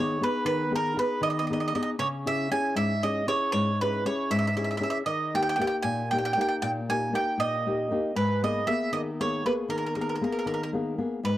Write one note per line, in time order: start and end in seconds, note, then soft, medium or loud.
0.00 0.20 D#3 soft
0.00 0.20 B3 soft
0.00 0.20 D#4 soft
0.00 0.21 G#4 soft
0.00 0.23 C#5 medium
0.21 0.63 B3 soft
0.21 0.63 D#4 soft
0.21 0.63 G#4 medium
0.21 0.45 B4 medium
0.45 0.96 D#3 medium
0.45 0.71 B4 medium
0.71 0.95 B3 soft
0.71 0.95 D#4 soft
0.71 0.95 G#4 medium
0.76 0.97 A#4 medium
0.96 1.39 B3 soft
0.96 1.39 D#4 soft
0.96 1.39 G#4 medium
0.96 1.21 B4 medium
1.21 1.72 D#3 medium
1.21 1.29 D#5 medium
1.30 1.38 D#5 medium
1.39 1.46 D#5 medium
1.47 1.73 B3 soft
1.47 1.74 D#4 soft
1.47 1.52 D#5 soft
1.51 1.74 G#4 soft
1.51 1.59 D#5 medium
1.60 1.66 D#5 soft
1.68 1.74 D#5 medium
1.74 1.94 B3 soft
1.74 1.95 D#4 soft
1.74 1.95 G#4 medium
1.74 1.81 D#5 medium
1.83 1.89 D#5 medium
1.99 2.49 C#3 medium
1.99 2.07 C#5 medium
2.26 2.50 C#4 soft
2.26 2.51 E4 soft
2.26 2.51 G#4 soft
2.26 2.50 E5 medium
2.51 2.93 C#4 medium
2.51 2.93 E4 soft
2.51 2.93 G#4 medium
2.51 2.74 G#5 medium
2.75 3.26 G#2 medium
2.75 3.02 E5 medium
3.03 3.26 C#4 soft
3.03 3.26 E4 soft
3.03 3.27 G#4 soft
3.03 3.26 D#5 medium
3.27 3.70 C#4 soft
3.27 3.70 E4 soft
3.27 3.70 G#4 soft
3.27 3.51 C#5 medium
3.52 4.04 G#2 medium
3.52 3.78 C#5 medium
3.81 4.04 C#4 soft
3.81 4.05 E4 soft
3.81 4.06 G#4 soft
3.81 4.04 B4 medium
4.05 4.48 C#4 soft
4.05 4.48 E4 soft
4.05 4.49 G#4 medium
4.05 4.29 C#5 medium
4.30 4.82 G#2 medium
4.30 4.37 E5 medium
4.39 4.46 E5 medium
4.47 4.54 E5 medium
4.56 4.79 C#4 soft
4.56 4.80 E4 soft
4.56 4.80 G#4 soft
4.56 4.63 E5 soft
4.64 4.69 E5 medium
4.71 4.76 E5 soft
4.77 5.01 C#4 soft
4.77 5.02 E4 soft
4.77 5.02 G#4 soft
4.77 4.82 E5 medium
4.83 4.89 E5 medium
4.90 4.97 E5 medium
5.06 5.58 D#3 medium
5.06 5.33 D#5 medium
5.34 5.58 A#3 soft
5.34 5.58 D#4 soft
5.34 5.59 G4 soft
5.34 5.41 G5 medium
5.42 5.48 G5 medium
5.49 5.55 G5 medium
5.56 6.01 A#3 soft
5.56 6.02 D#4 soft
5.56 5.60 G5 medium
5.60 6.02 G4 medium
5.60 5.66 G5 medium
5.67 5.76 G5 medium
5.83 6.35 A#2 medium
5.83 6.10 G#5 medium
6.11 6.36 A#3 soft
6.11 6.36 D#4 soft
6.11 6.37 G4 soft
6.11 6.17 G5 medium
6.18 6.24 G5 medium
6.25 6.32 G5 medium
6.33 6.79 A#3 soft
6.33 6.40 G5 medium
6.37 6.79 D#4 soft
6.37 6.80 G4 soft
6.37 6.47 G5 medium
6.48 6.55 G5 medium
6.62 7.13 A#2 medium
6.62 6.70 G5 medium
6.89 7.11 A#3 soft
6.89 7.12 D#4 soft
6.89 7.12 G4 soft
6.89 7.13 G#5 medium
7.13 7.55 A#3 soft
7.13 7.55 D#4 soft
7.13 7.56 G4 medium
7.13 7.38 G5 medium
7.38 7.89 A#2 medium
7.38 8.16 D#5 medium
7.66 7.90 A#3 soft
7.66 7.90 D#4 soft
7.66 7.91 G4 soft
7.91 8.11 A#3 soft
7.91 8.11 D#4 soft
7.91 8.11 G4 soft
8.15 8.66 G#2 medium
8.15 8.42 B4 medium
8.43 8.66 A#3 soft
8.43 8.66 B3 soft
8.43 8.67 G#4 soft
8.43 8.66 D#5 medium
8.67 9.09 A#3 soft
8.67 9.09 B3 soft
8.67 9.10 G#4 medium
8.67 8.90 E5 medium
8.92 9.43 D#3 medium
8.92 9.00 D#5 medium
9.20 9.44 A#3 soft
9.20 9.44 B3 soft
9.20 9.45 G#4 soft
9.20 9.43 C#5 medium
9.45 9.87 A#3 soft
9.45 9.87 B3 soft
9.45 9.87 G#4 medium
9.45 9.52 B4 medium
9.69 10.20 D#3 medium
9.69 9.76 A#4 medium
9.78 9.85 A#4 soft
9.86 9.93 A#4 soft
9.95 10.20 A#3 soft
9.95 10.20 B3 soft
9.95 10.20 G#4 soft
9.95 10.00 A#4 soft
10.01 10.08 A#4 soft
10.09 10.14 A#4 soft
10.15 10.22 A#4 soft
10.21 10.64 A#3 soft
10.21 10.64 B3 soft
10.21 10.64 G#4 soft
10.21 10.30 A#4 soft
10.32 10.38 A#4 soft
10.39 10.45 A#4 soft
10.46 10.98 D#3 medium
10.46 10.53 A#4 medium
10.54 10.60 A#4 soft
10.63 10.69 A#4 soft
10.73 10.97 A#3 soft
10.73 10.97 B3 soft
10.73 10.97 G#4 soft
10.98 11.19 A#3 soft
10.98 11.19 B3 soft
10.98 11.19 G#4 soft
11.23 11.38 G#2 medium
11.23 11.38 B4 medium